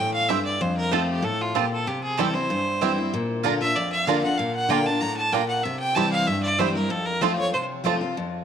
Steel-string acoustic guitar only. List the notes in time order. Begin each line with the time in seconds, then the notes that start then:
0.00 A2
0.30 G2
0.61 F2
0.91 F3 A3 C4 F4
1.22 A2
1.55 A#2
1.87 C3
2.19 E3 G3 C4 E4
2.34 C4 E4
2.50 G2
2.81 E3 G3 C4 E4
2.98 C4 E4
3.14 A#2
3.44 D3 A#3 D4 F4
3.61 D4 F4
3.76 F2
4.07 D3 A#3 D4 F4
4.23 D4 F4
4.39 A#2
4.69 D3 A#3 D4 F4
4.87 D4 F4
5.02 A2
5.32 A#2
5.65 C3
5.96 E3 G3 C4 E4
6.28 G2
6.59 E3 G3 C4 E4
6.75 C4 E4
6.90 F2
7.21 F3 A3 C4 F4
7.38 C4 F4
7.54 C3
7.84 F3 A3 C4 F4
8.01 C4 F4
8.17 F2